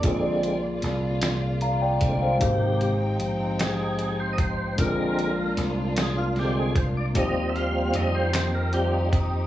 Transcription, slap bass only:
\new Staff \with { instrumentName = "Slap bass" } { \clef bass \time 6/8 \key bes \mixolydian \tempo 4. = 51 bes,,4 c,2 | aes,,4 bes,,2 | bes,,4 c,2 | ees,4 f,2 | }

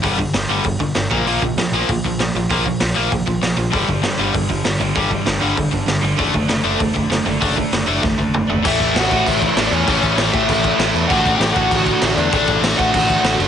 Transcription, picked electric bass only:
\new Staff \with { instrumentName = "Picked electric bass" } { \clef bass \time 4/4 \key d \mixolydian \tempo 4 = 195 g,,4 g,,8 g,,8 g,,8 g,,8 g,,8 bes,,8 | bes,,8 bes,,8 bes,,8 bes,,8 bes,,8 bes,,8 bes,,8 bes,,8 | bes,,4 bes,,8 bes,,8 bes,,8 bes,,8 bes,,8 bes,,8 | g,,8 g,,8 g,,8 g,,8 g,,8 g,,8 g,,8 g,,8 |
g,,4 g,,8 g,,8 g,,8 g,,8 g,,8 g,,8 | fis,,8 fis,,8 fis,,8 fis,,8 fis,,8 fis,,8 fis,,8 fis,,8 | fis,,4 fis,,8 fis,,8 fis,,8 fis,,8 fis,,8 fis,,8 | \key a \mixolydian a,,8 a,,8 a,,8 a,,8 a,,4 a,,8 e,8 |
a,,8 a,,8 a,,8 a,,8 a,,4 a,,8 e,8 | a,,8 a,,8 a,,8 a,,8 a,,4 a,,8 e,8 | a,,8 a,,8 a,,8 a,,8 a,,4 a,,8 fis,,8 | }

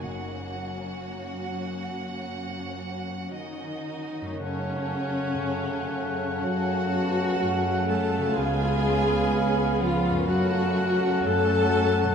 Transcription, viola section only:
\new Staff \with { instrumentName = "Viola section" } { \time 4/4 \key fis \major \tempo 4 = 61 <fis ais>2. dis'4 | \key fis \minor cis'2 fis'4. a'8 | gis'4. eis'8 fis'4 a'4 | }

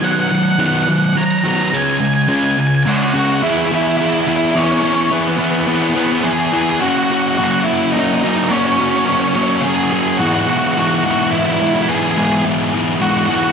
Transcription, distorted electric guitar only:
\new Staff \with { instrumentName = "Distorted electric guitar" } { \time 3/4 \key e \lydian \tempo 4 = 106 <dis fis b>8 <dis fis>8 <dis fis b>8 <dis fis>8 <dis fis>8 <dis fis b>8 | <cis gis cis'>8 <cis gis>8 <cis gis cis'>8 <cis gis>8 <cis gis>8 <cis gis cis'>8 | <e b e' gis'>8 <e b e' gis'>8 <e b e' gis'>8 <e b e' gis'>8 <e b e' gis'>8 <e b e' gis'>8 | <e b e' gis'>8 <e b e' gis'>8 <e b e' gis'>8 <e b e' gis'>8 <e b e' gis'>8 <e b e' gis'>8 |
<fis ais cis' fis'>8 <fis ais cis' fis'>8 <fis ais cis' fis'>8 <fis ais cis' fis'>8 <fis ais cis' fis'>8 <fis ais cis' fis'>8 | <fis ais cis' fis'>8 <fis ais cis' fis'>8 <fis ais cis' fis'>8 <fis ais cis' fis'>8 <fis ais cis' fis'>8 <fis ais cis' fis'>8 | <gis, e gis b e'>8 <gis, e gis b e'>8 <gis, e gis b e'>8 <gis, e gis b e'>8 <gis, e gis b e'>8 <gis, e gis b e'>8 | <gis, e gis b e'>8 <gis, e gis b e'>8 <gis, e gis b e'>8 <gis, e gis b e'>8 <gis, e gis b e'>8 <gis, e gis b e'>8 | }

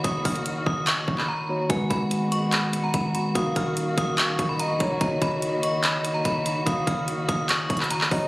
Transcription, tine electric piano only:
\new Staff \with { instrumentName = "Tine electric piano" } { \time 4/4 \key ges \major \tempo 4 = 145 <ees bes ges' des''>2.~ <ees bes ges' des''>8 <ees bes ges' des''>8 | <ees aes ges' ces''>1 | <ees bes ges' bes'>1 | <ees bes ges' des''>1~ |
<ees bes ges' des''>2.~ <ees bes ges' des''>8 <ees bes ges' des''>8 | }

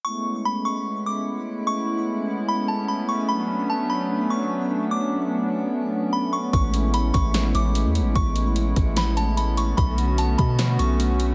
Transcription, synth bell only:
\new Staff \with { instrumentName = "Synth bell" } { \time 4/4 \key a \major \tempo 4 = 148 cis'''4 b''8 cis'''4 d'''8 r4 | cis'''2 b''8 a''8 b''8 cis'''8 | b''4 a''8 b''4 cis'''8 r4 | d'''2. b''8 cis'''8 |
cis'''4 b''8 cis'''4 d'''8 r4 | cis'''2 b''8 a''8 b''8 cis'''8 | b''4 a''8 b''4 cis'''8 r4 | }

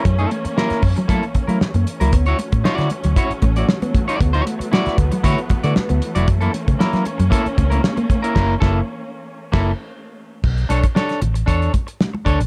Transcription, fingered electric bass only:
\new Staff \with { instrumentName = "Fingered electric bass" } { \clef bass \time 4/4 \key fis \minor \tempo 4 = 116 fis,8 r4 fis,16 r16 fis16 r8 fis16 r16 fis,16 r16 cis,16 | d,8 r16 a,16 r16 d16 r16 d,16 r8 a,,8 r4 | d,8 r4 d,16 r16 d16 r8 d16 r16 d,16 r16 eis,,16 | fis,8 r16 cis16 r16 fis16 r16 fis,16 r8 cis,8 r4 |
fis,,8 fis,,8 r4 r16 fis,,8 r4 r16 | b,,8 b,,16 r8. a,,8 e,8 r4 d,16 ais,,16 | }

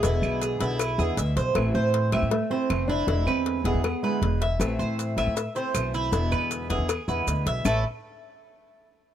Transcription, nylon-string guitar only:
\new Staff \with { instrumentName = "Nylon-string guitar" } { \time 4/4 \key a \minor \tempo 4 = 158 gis'2. r4 | r4. a8 a8 c'4 d'8~ | d'8 c'4 b8 b8 gis4 r8 | r1 |
r1 | r1 | }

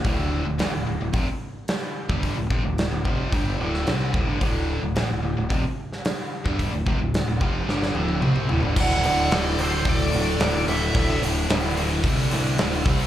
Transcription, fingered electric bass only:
\new Staff \with { instrumentName = "Fingered electric bass" } { \clef bass \time 4/4 \key c \lydian \tempo 4 = 110 d,,8. d,,16 a,,16 d,,16 d,,16 d,,16 f,,16 r4. g,,16~ | g,,16 d,,16 f,,16 d,,8 d,,16 f,,8 g,,8 d,,8 c,8 d,,16 g,,16 | d,,8. d,,16 a,,16 d,,16 d,,16 d,,16 f,,16 r4. g,,16~ | g,,16 d,,16 f,,16 d,,8 d,,16 f,,8 g,,8 d,,8 c,8 d,,16 g,,16 |
d,,8 d,,8 d,,8 d,,8 d,,8 d,,8 d,,8 d,,8 | d,,8 d,,8 d,,4 c,8 c,8 d,,8 c,8 | }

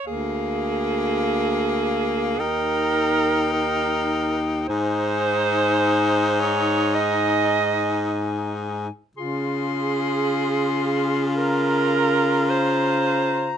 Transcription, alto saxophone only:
\new Staff \with { instrumentName = "Alto saxophone" } { \time 4/4 \key aes \major \tempo 4 = 53 aes'2 bes'4 bes'8. r16 | c''4. des''8 ees''4. r8 | aes'2 bes'4 c''4 | }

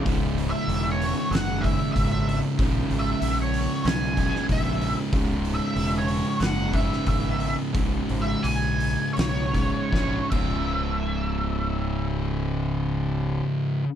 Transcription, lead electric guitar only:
\new Staff \with { instrumentName = "Lead electric guitar" } { \time 4/4 \key cis \dorian \tempo 4 = 92 \tuplet 3/2 { r4 e''8~ e''8 cis''4 } fis''8 e''8 e''8. r16 | \tuplet 3/2 { r4 e''8~ e''8 cis''4 } gis''4 e''8. r16 | \tuplet 3/2 { r4 e''8~ e''8 cis''4 } fis''8 e''8 e''8. r16 | \tuplet 3/2 { r4 e''8 } gis''4 cis''4. e''8~ |
e''1 | }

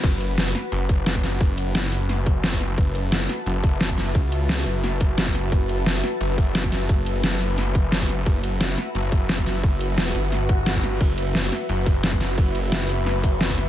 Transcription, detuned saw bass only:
\new Staff \with { instrumentName = "Detuned saw bass" } { \clef bass \time 4/4 \key fis \minor \tempo 4 = 175 fis,,4. r8 fis,,8 fis,,4. | fis,,1 | fis,,4. r8 fis,,8 fis,,4. | cis,4. fis,,2~ fis,,8 |
fis,,4. r8 fis,,8 fis,,4. | fis,,1 | fis,,4. r8 fis,,8 fis,,4. | fis,,4. g,,2~ g,,8 |
fis,,4. r8 fis,,8 fis,,4. | fis,,1 | }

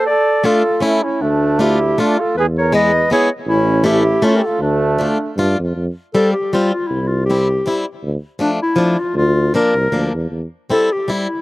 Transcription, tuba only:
\new Staff \with { instrumentName = "Tuba" } { \clef bass \time 3/4 \key d \minor \tempo 4 = 158 r2. | d,2. | e,2. | a,,2. |
d,2 g,8 f,8 | \key f \major f,8 r2 r8 | c,2. | d,8 r2 r8 |
d,4. c,8 d,8 e,8 | e,8 r2 r8 | }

